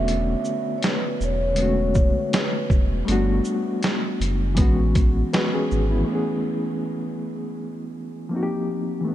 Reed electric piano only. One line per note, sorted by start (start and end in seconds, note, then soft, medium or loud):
0.00 1.03 D3 medium
0.00 1.04 A3 medium
0.00 1.05 B3 medium
0.00 1.06 C#4 medium
0.00 1.07 F#4 medium
0.00 3.10 A4 medium
0.00 3.09 D5 medium
1.55 2.91 D3 medium
1.55 1.64 G#3 soft
1.55 2.92 B3 medium
1.60 2.95 A3 medium
1.60 2.93 C#4 medium
1.60 2.94 F#4 medium
3.05 4.41 G3 medium
3.05 4.42 A3 medium
3.05 4.43 B3 medium
3.10 4.43 D4 medium
3.10 4.44 F#4 medium
4.55 5.91 E3 medium
4.55 5.92 G#3 medium
4.55 5.33 B3 medium
4.60 5.34 C#4 medium
4.60 5.33 F#4 medium
5.33 5.53 F#4 medium
5.33 5.53 B4 medium
5.54 5.90 C#4 medium
5.54 5.89 G#4 medium
5.91 6.07 B3 soft
5.91 6.27 E4 medium
6.01 8.25 E3 medium
6.01 8.27 A3 medium
6.08 8.29 B3 medium
6.08 8.31 C#4 medium
6.15 8.32 G#4 medium
8.29 9.06 F3 medium
8.29 9.07 A#3 medium
8.29 9.08 C4 medium
8.35 9.09 D#4 medium
8.35 8.42 F#4 medium
8.43 9.13 G4 medium
9.01 9.15 E3 medium
9.01 9.15 A3 medium
9.08 9.15 B3 medium
9.08 9.15 D4 medium